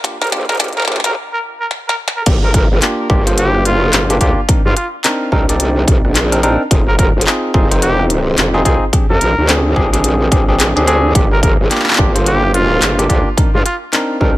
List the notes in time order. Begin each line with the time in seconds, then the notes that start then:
0.04 A#3 D4 F4 G4, kick, snare, closed hi-hat
0.21 A#1 A#4, snare, closed hi-hat
0.24 closed hi-hat
0.27 closed hi-hat
0.30 A#3 D4 F4 G4, snare, closed hi-hat
0.32 closed hi-hat
0.41 closed hi-hat
0.45 G#1 A#4, snare, closed hi-hat
0.49 closed hi-hat
0.52 closed hi-hat
0.55 closed hi-hat
0.57 G#1 A#3 D4 F4 G4, kick, snare, closed hi-hat
0.60 closed hi-hat
0.64 closed hi-hat
0.68 closed hi-hat
0.73 closed hi-hat
0.77 A#4, snare
0.80 snare
0.82 snare
0.85 D2 A#3 D4 F4 G4, snare
0.88 snare
0.92 snare
0.96 snare
1.00 snare
1.04 G#1 A#4, snare, closed hi-hat
1.33 A#4
1.60 A#4
1.71 snare
1.88 A#4, snare
2.08 snare
2.16 A#4
2.26 G1 A#3 D4 F4 G4, kick, closed hi-hat, crash
2.44 A#4
2.54 A#4, kick, cross-stick, closed hi-hat
2.71 G1
2.82 A#3 D4 F4 G4, clap, closed hi-hat
3.10 G1 A#3 D4 F4 G4, kick
3.27 A#3 D4 F4 C5, closed hi-hat
3.38 G4, closed hi-hat
3.55 cross-stick
3.65 F#1 F4, cross-stick, closed hi-hat
3.93 G1, clap, closed hi-hat
4.10 A#3 D4 F4 G4, closed hi-hat
4.21 D2 A#3 D4 F4 G4, kick, closed hi-hat
4.49 C4 D4 D#4 A#4, kick, closed hi-hat
4.65 G2 F4
4.76 F4, cross-stick, closed hi-hat
5.04 C4 D4 D#4 A#4, clap, closed hi-hat
5.32 C2 C4 D4 D#4 A#4, kick
5.49 C4 D4 D#4 D5, closed hi-hat
5.60 closed hi-hat
5.88 C2, kick, closed hi-hat
6.05 A#1, cross-stick
6.15 clap, closed hi-hat
6.32 C4 D4 D#4 A#4, closed hi-hat
6.43 C4 D4 D#4 A#4, closed hi-hat
6.71 F1 C4 D#4 F4 G#4, kick, closed hi-hat
6.88 A#4
6.99 A#4, kick, cross-stick, closed hi-hat
7.16 F1
7.21 closed hi-hat
7.26 C4 D#4 F4 G#4, clap
7.54 F1 C4 D#4 F4 G#4, kick
7.71 C4 D#4 F4 C5, closed hi-hat
7.82 G4, closed hi-hat
7.99 cross-stick
8.10 closed hi-hat
8.18 cross-stick
8.38 F1, clap, closed hi-hat
8.54 C4 D#4 F4 G#4
8.65 C2 C4 D#4 F4 G#4, kick, closed hi-hat
8.93 C4 D4 G4 G#4, kick, closed hi-hat
9.10 F2 A#4
9.21 A#1, closed hi-hat
9.38 D2
9.49 C4 D4 G4 G#4, clap, closed hi-hat
9.76 A#1 C4 D4 G4 G#4, kick
9.93 C4 D4 G4 G#4, closed hi-hat
10.04 closed hi-hat
10.31 A#1 C4 D4 G4 G#4, kick, closed hi-hat
10.48 C4 D4 G4 G#4, cross-stick
10.60 clap, closed hi-hat
10.76 D2 C4 D4 G4 G#4, closed hi-hat
10.87 C4 D4 G4 G#4, closed hi-hat
11.15 G1 A#3 D4 F4 G4, kick, closed hi-hat
11.32 A#4
11.43 A#4, kick, closed hi-hat
11.60 G1
11.71 A#3 D4 F4 G4, clap, closed hi-hat
11.75 clap
11.79 clap
11.84 clap
11.88 clap
11.90 clap
11.93 clap
11.96 G1 A#3 D4 F4 G4, kick, clap
12.15 A#3 D4 F4 C5, closed hi-hat
12.26 G4, closed hi-hat
12.43 cross-stick
12.54 F4, cross-stick, closed hi-hat
12.82 G1, clap, closed hi-hat
12.99 A#3 D4 F4 G4, closed hi-hat
13.09 D2 A#3 D4 F4 G4, kick, closed hi-hat
13.37 C4 D4 D#4 A#4, kick, closed hi-hat
13.54 G2 F4
13.65 F4, cross-stick, closed hi-hat
13.93 C4 D4 D#4 A#4, clap, closed hi-hat
14.21 C2 C4 D4 D#4 A#4, kick